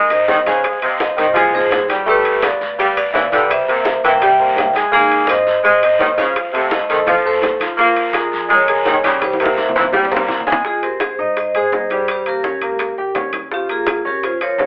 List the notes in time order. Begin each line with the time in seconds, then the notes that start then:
Already playing: D#2 G#3
0.10 D#4 C5 D#5, high bongo, high conga, high timbale
0.28 F2 D#3, high bongo, low bongo, high conga, low timbale, short guiro
0.46 C#3 G#3 G#4 C5 F5 G#5, high bongo, high conga, high timbale, short guiro
0.64 high bongo, high conga, high timbale, long guiro
0.82 C3 C4 C5 D#5, high conga, high timbale
1.00 C5 D#5, high bongo, high conga, low timbale, short guiro
1.17 C2 D#3 C4 C5 D#5, high bongo, high conga, high timbale, short guiro
1.34 F3 G#3 G#4 C5 G#5, high bongo, high conga, low conga, high timbale, long guiro
1.39 G#4
1.53 G#1 C4 G#4 C5 D#5, high bongo, high conga, low conga
1.71 G1, high bongo, low bongo, high conga, high timbale, low timbale, short guiro
1.88 G3 G4 G5, high conga, high timbale, short guiro
2.06 G3 A3 G4 B4 G5, high bongo, high conga, long guiro
2.25 high conga, high timbale
2.42 B3 B4 D5 F5, high bongo, high conga, high timbale, low timbale, short guiro
2.60 D2, high bongo, high conga, short guiro
2.78 G3 B3 B4 D5 F5, high bongo, high conga, high timbale, long guiro
2.97 B3 B4 D5 F5, high bongo, high conga, high timbale
3.13 C2 E3, high bongo, low bongo, high conga, low timbale, short guiro
3.31 D3 G3 G4 B4 D5 G5, high bongo, high conga, high timbale, short guiro
3.50 C5 E5, high bongo, high conga, high timbale, long guiro
3.68 C3 A#3 A#4 C5, high conga, high timbale
3.85 high bongo, high conga, low timbale, short guiro
4.03 G2 E3 A#3 A#4 C5 E5 G5, high bongo, high conga, high timbale, short guiro
4.20 G3 G4 G5, high bongo, high conga, low conga, high timbale, long guiro
4.38 G2 A#3 A#4 C5, high bongo, high conga
4.56 G#2, high bongo, low bongo, high conga, high timbale, low timbale, short guiro
4.73 G#3 G#4 G#5, high conga, high timbale, short guiro
4.92 G#3 A#3 D#4 G#4 G#5, high bongo, high conga, long guiro
5.10 high conga, high timbale
5.27 C4 C5 D#5, high bongo, high conga, high timbale, low timbale, short guiro
5.45 D#2, high bongo, high conga, short guiro
5.63 G#3 C4 C5 D#5, high bongo, high conga, high timbale, long guiro
5.81 C4 C5 D#5, high bongo, high conga, high timbale
5.99 F2 D#3, high bongo, low bongo, high conga, low timbale, short guiro
6.17 C#3 F3 F4 C5 F5, high bongo, high conga, high timbale, short guiro
6.35 high bongo, high conga, high timbale, long guiro
6.53 C3 A3 A4 C5, high conga, high timbale
6.71 C5 D#5, high bongo, high conga, low timbale, short guiro
6.89 F2 D#3 A3 A4 C5, high bongo, high conga, high timbale, short guiro
7.06 F3 F4 A4 C5 F5, high bongo, high conga, low conga, high timbale, long guiro
7.24 A3 A4 C5, high bongo, high conga
7.42 A#1, high bongo, low bongo, high conga, high timbale, low timbale, short guiro
7.60 F3 F4 F5, high conga, high timbale, short guiro
7.78 F3 A#3 F4 A#4 F5, high bongo, high conga, long guiro
7.96 high conga, high timbale
8.13 G#3 G#4 A#4, high bongo, high conga, high timbale, low timbale, short guiro
8.32 F2, high bongo, high conga, short guiro
8.49 G#3 G#4 A#4 C#5, high bongo, high conga, high timbale, long guiro
8.68 G#3 G#4 A#4, high bongo, high conga, high timbale
8.85 C2 D#3, high bongo, low bongo, high conga, low timbale, short guiro
9.04 C#3 G3 G4 G5, high bongo, high conga, high timbale, short guiro
9.22 G4 C5, high bongo, high conga, high timbale, long guiro
9.33 high conga
9.40 C3 A#3 A#4 C5 E5, high timbale
9.46 high conga
9.57 C5 E5, high bongo, high conga, low timbale, short guiro
9.69 low conga
9.75 G2 E3 A#3 A#4 C5, high bongo, high timbale, short guiro
9.81 low conga
9.93 G3 G4 G5, high bongo, low conga, low timbale, long guiro
10.05 low conga
10.10 G2 A#3 A#4 C5, high bongo, low timbale
10.16 low conga
10.28 F2, low conga, short guiro
10.40 low conga
10.47 G#3 G#4 G#5, low bongo, low timbale, short guiro
10.52 low conga
10.64 G#3 F4 G#4, high bongo, high conga
10.82 C4 G4 A#4 C5, high conga, high timbale
11.00 G#4 C5, high bongo, high conga, high timbale, low timbale
11.18 G#2 D#4 C5 D#5, high bongo, high conga
11.36 C5 D#5, high bongo, high conga, high timbale
11.54 G#3 G#4 C5, high bongo, high conga, high timbale
11.72 G2 D#4 D#5, high bongo, low bongo, high conga, low timbale
11.90 G3 G4, high bongo, high conga, high timbale
12.08 G4 C5, high bongo, high conga, high timbale
12.26 A#3 G4 A#4, high conga, high timbale
12.43 C#4 C#5, high bongo, high conga, low timbale
12.62 C#2 A#3 A#4, high bongo, high conga, high timbale
12.79 high bongo, high conga, high timbale
12.98 C2 G4 G5, high bongo, high conga
13.15 A#1 C#4 C#5, high bongo, low bongo, high conga, high timbale, low timbale
13.33 high conga, high timbale
13.51 F3 C#4 F4 G4, high bongo, high conga
13.69 A#3 F4 G#4 A#4, high conga, high timbale
13.87 high bongo, high conga, high timbale, low timbale
14.05 F2 C#4 G4 A#4 C#5, high bongo, high conga
14.23 F4 C5, high bongo, high conga, high timbale
14.41 F3 F4 A#4 C#5, high bongo, high conga, high timbale
14.58 C2 C#4 C#5, high bongo, low bongo, high conga, low timbale